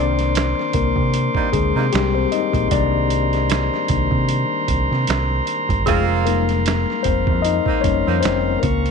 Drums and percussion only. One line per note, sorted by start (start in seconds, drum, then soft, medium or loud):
0.19 snare soft
0.19 closed hi-hat soft
0.35 finger snap medium
0.35 snare loud
0.35 closed hi-hat medium
0.59 snare soft
0.73 kick medium
0.73 closed hi-hat medium
0.96 kick loud
1.14 closed hi-hat medium
1.35 kick medium
1.53 kick medium
1.53 closed hi-hat medium
1.78 snare soft
1.93 finger snap medium
1.93 snare loud
1.93 closed hi-hat medium
2.32 closed hi-hat medium
2.54 kick medium
2.54 closed hi-hat soft
2.71 kick loud
2.71 closed hi-hat medium
3.10 closed hi-hat medium
3.33 snare soft
3.33 closed hi-hat soft
3.50 finger snap medium
3.50 snare loud
3.50 closed hi-hat medium
3.74 snare soft
3.88 kick loud
3.88 closed hi-hat medium
4.11 kick medium
4.29 closed hi-hat medium
4.68 kick medium
4.68 closed hi-hat medium
4.93 snare soft
5.07 finger snap medium
5.07 snare loud
5.07 closed hi-hat medium
5.47 closed hi-hat medium
5.69 kick medium
5.69 closed hi-hat soft
5.87 kick loud
5.87 closed hi-hat medium
6.27 closed hi-hat medium
6.49 snare soft
6.49 closed hi-hat soft
6.66 finger snap medium
6.66 snare loud
6.66 closed hi-hat medium
6.90 snare soft
7.04 kick medium
7.04 closed hi-hat medium
7.27 kick medium
7.45 closed hi-hat medium
7.66 kick loud
7.84 kick loud
7.84 closed hi-hat medium
8.08 snare soft
8.23 finger snap medium
8.23 snare loud
8.23 closed hi-hat medium
8.63 kick loud
8.63 closed hi-hat medium
8.86 closed hi-hat soft